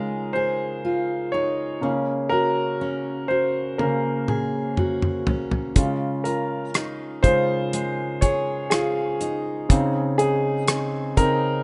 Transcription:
Already playing: C#3 G#3 D#4 F4 G#4 A#4
0.33 G#4 C5
0.85 F4
1.32 D#4 C#5
1.81 C#3 A#3 C#4
2.29 F#4 A#4
2.81 C#4
3.28 F#4 C5
3.78 C#3 A#3 C#4 A#4, high tom
4.28 G#4, mid tom
4.77 F#4, mid tom
5.02 mid tom
5.27 C#4, floor tom
5.51 floor tom
5.75 C#3 G#3 F4, kick, closed hi-hat
6.24 F4 A#4, closed hi-hat
6.74 D#4, cross-stick, closed hi-hat
7.23 C#3 G#3 F4 C5, kick, closed hi-hat
7.73 G#3, closed hi-hat
8.21 G#4 C#5, kick, closed hi-hat
8.70 F4 G#4, cross-stick, closed hi-hat
9.21 D#4, closed hi-hat
9.69 C#3 C4 D#4, kick, closed hi-hat
10.18 D#4 G#4, closed hi-hat
10.68 C4, cross-stick, closed hi-hat
11.17 C#3 C4 D#4 A#4, kick, closed hi-hat

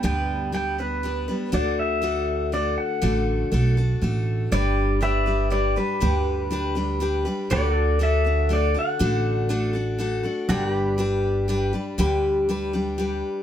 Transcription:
0.03 D2 G2 D3 G3 B3 D4 B4 G5
0.52 G3 B3 D4 B4 G5
0.78 G3 B3 D4 B4
1.03 G3 B3 D4 B4
1.28 G3 B3 D4 B4
1.52 D2 D3 A3 D4 F#4 A4 D5
1.80 E5
2.02 A3 D4 F#4 A4
2.52 A3 D4 F#4 A4 D5
2.78 F#5
3.02 A1 D3 A3 D4 F#4 A4
3.52 B1 A3 D4 F#4 A4
3.77 D4 F#4 A4
4.02 A1 A3 D4 F#4 A4
4.52 G1 G2 D3 G3 D4 G4 B4 D5
5.01 G3 D4 G4 B4 D5 E5
5.26 G3 D4 G4 B4
5.50 G3 D4 G4 B4 D5
5.76 G3 D4 G4 B4
6.00 D2 G2 D3 G3 D4 G4 B4
6.51 G3 D4 G4 B4
6.75 G3 D4 G4 B4
7.00 G3 D4 G4 B4
7.25 G3 D4 G4 B4
7.50 D2 D3 A3 D4 F#4 G4 A4 B4 D5
7.55 D5
7.73 F#4
7.78 A4
7.99 A3 D4 F#4 A4
8.03 E5
8.24 D4 F#4 A4
8.49 A3 D4 F#4 A4
8.53 D5
8.74 D4 F#4 A4
8.79 F#5
8.99 A1 D3 A3 D4 F#4 A4
9.49 A3 D4 F#4 A4
9.73 D4 F#4 A4
9.99 A3 D4 F#4 A4
10.23 D4 F#4 A4
10.49 G1 G2 D3 G3 D4 F#4 G4 A4 B4 D5
10.69 G4
10.75 B4
10.98 G3 D4 G4 B4
11.48 G3 D4 G4 B4
11.73 G3 D4 G4 B4
11.98 D2 G2 D3 G3 D4 G4 B4
12.49 G3 D4 G4 B4
12.73 G3 D4 G4 B4
12.98 G3 D4 G4 B4

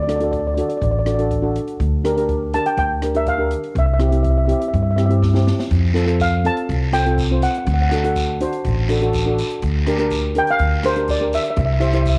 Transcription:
Already playing: D2
0.03 D5
0.07 D4 F#4 A4 D5, cross-stick, closed hi-hat
0.16 D4 D5
0.20 F#4 A4, closed hi-hat
0.24 D5
0.32 D5, kick, closed hi-hat
0.39 D5
0.47 D5
0.55 D4 F#4 A4 D5, closed hi-hat
0.61 D5
0.69 D5, closed hi-hat
0.77 D5
0.81 A1 D5, kick, closed hi-hat
0.91 D5
0.99 D5
1.06 D4 F#4 A4 D5, cross-stick, closed hi-hat
1.14 D5
1.18 D4 F#4 A4, closed hi-hat
1.31 kick, closed hi-hat
1.42 D4 F#4 A4
1.56 closed hi-hat
1.67 closed hi-hat
1.80 D2, kick, closed hi-hat
2.04 D4 G4 A#4, cross-stick, closed hi-hat
2.17 D4 G4 A#4, closed hi-hat
2.29 kick, closed hi-hat
2.53 D4 G4 A#4 A5, closed hi-hat
2.66 G5, closed hi-hat
2.77 D2 G5, kick, closed hi-hat
3.02 D4 G4 A#4, cross-stick, closed hi-hat
3.14 D4 G4 A#4 E5, closed hi-hat
3.26 F5, kick, closed hi-hat
3.38 D4 G4 A#4
3.51 closed hi-hat
3.63 closed hi-hat
3.75 C2 E5, kick, closed hi-hat
3.86 E5
3.94 E5
3.99 C4 E4 G4 E5, cross-stick, closed hi-hat
4.09 C4 E4 G4 E5, closed hi-hat
4.15 E5
4.23 E5, kick, closed hi-hat
4.30 E5
4.38 E5
4.45 C4 E4 G4 E5, closed hi-hat
4.52 E5
4.60 E5, closed hi-hat
4.68 E5
4.73 G2 E5, kick, closed hi-hat
4.82 E5
4.91 E5
4.96 C4 E4 G4 E5, cross-stick, closed hi-hat
5.06 C4 E5
5.10 E4 G4, closed hi-hat
5.22 kick, snare
5.34 C4 E4 G4, snare
5.47 snare
5.59 snare
5.71 F2, kick, closed hi-hat, long guiro
5.94 C4 F4 A4, cross-stick, closed hi-hat
6.06 C4 F4 A4, closed hi-hat
6.20 F5, kick, closed hi-hat, short guiro
6.44 C4 F4 A4 A5, closed hi-hat
6.57 closed hi-hat
6.69 C2, kick, closed hi-hat, long guiro
6.93 C4 F4 A4 G5, cross-stick, closed hi-hat, short guiro
7.06 C4 F4 A4, closed hi-hat
7.18 kick, closed hi-hat, short guiro
7.31 C4 F4 C5
7.42 F#5, closed hi-hat, short guiro
7.55 closed hi-hat
7.66 D2 F#5, kick, closed hi-hat, long guiro
7.74 F#5
7.82 F#5
7.90 D4 F#4 A4 F#5, cross-stick, closed hi-hat
7.97 F#5
8.04 D4 F#4 A4 F#5, closed hi-hat
8.16 kick, closed hi-hat, short guiro
8.41 D4 F#4 C5, closed hi-hat
8.53 closed hi-hat
8.65 A1, kick, closed hi-hat, long guiro
8.89 D4 F#4 A4, cross-stick, closed hi-hat, short guiro
9.01 D4 F#4 A4, closed hi-hat
9.13 kick, closed hi-hat, short guiro
9.26 D4 F#4 A4
9.38 closed hi-hat, short guiro
9.50 closed hi-hat
9.62 D2, kick, closed hi-hat, long guiro
9.86 D4 G4 A#4, cross-stick, closed hi-hat
9.98 D4 G4 A#4, closed hi-hat
10.10 kick, closed hi-hat, short guiro
10.35 D4 G4 A#4 G5, closed hi-hat
10.47 F5, closed hi-hat
10.59 D2, kick, closed hi-hat, long guiro
10.83 D4 G4 A#4 C5, cross-stick, closed hi-hat, short guiro
10.96 D4 G4 A#4, closed hi-hat
11.08 D5, kick, closed hi-hat, short guiro
11.21 D4 G4 A#4
11.33 E5, closed hi-hat, short guiro
11.43 E5, closed hi-hat
11.50 E5
11.56 C2 E5, kick, closed hi-hat, long guiro
11.65 E5
11.73 E5
11.80 E4 G4 C5 E5, cross-stick, closed hi-hat
11.87 E5
11.93 E4 G4 C5 E5, closed hi-hat
12.02 E5, kick, closed hi-hat
12.07 E5, short guiro

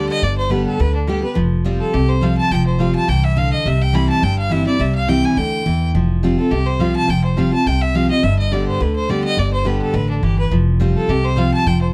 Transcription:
Already playing: D3 G3 B3 G4
0.09 D#5
0.22 G1 G2 D5
0.38 C5
0.50 D3 G3 B3 G4 B4
0.66 A4
0.80 D2 D3 B4
0.95 D4
1.07 D3 G3 B3 G4
1.22 B3 G4 B4
1.35 F1 F3
1.64 F3 G3 C4 F4
1.80 A4
1.94 C2 C3 G4
2.09 C5
2.21 F3 G3 C4 F4 F5
2.37 A5
2.51 F1 F3 G5
2.66 C5
2.79 F3 G3 C4 F4 F5
2.95 A5
3.08 C2 E3 G5
3.24 E5
3.37 D3 F5
3.52 D#5
3.66 C2 C3 E5
3.81 G5
3.93 E3 G3 C4 E4 B5
4.09 A5
4.23 G1 G2 G5
4.38 F5
4.50 E3 G3 C4 E4 E5
4.66 C4 E4 D5
4.79 C2 C3 E5
4.95 F5
5.07 E3 G3 C4 E4 G5
5.25 G#5
5.37 D2 D3 G5
5.66 E2 E3
5.94 F1 F3
6.23 F3 G3 C4 F4
6.38 C4 F4 A4
6.51 C2 C3 G4
6.66 C5
6.79 F3 G3 C4 F4 F5
6.96 A5
7.08 F1 F3 G5
7.24 C5
7.37 F3 G3 C4 F4 F5
7.52 C4 F4 A5
7.66 C2 C3 G5
7.81 E5
7.95 F3 G3 C4 F4 F5
8.10 C4 F4 D#5
8.23 G1 G2 E5
8.39 D#5
8.51 D3 G3 B3 G4 D5
8.68 C5
8.80 D2 D3 B4
8.96 C5
9.09 D3 G3 B3 G4 D5
9.24 D#5
9.37 G1 G2 D5
9.53 C5
9.65 D3 G3 B3 G4 B4
9.82 A4
9.94 A1 D3 B4
10.10 D4
10.22 G1 E3 G4
10.39 B4
10.51 F1 F3
10.80 F3 G3 C4 F4
10.96 A4
11.08 C2 C3 G4
11.24 C5
11.36 F3 G3 C4 F4 F5
11.53 A5
11.66 F1 F3 G5
11.82 C5

